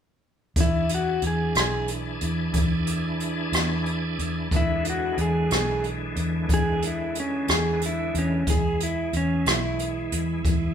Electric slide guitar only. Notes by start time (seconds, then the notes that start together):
0.60 E4
0.94 F#4
1.27 G#4
1.59 G#4
4.56 E4
4.90 F#4
5.21 G#4
5.55 G#4
6.54 G#4
6.87 E4
7.20 C#4
7.52 G#4
7.86 E4
8.19 C#4
8.50 G#4
8.83 E4
9.17 C#4
9.50 E4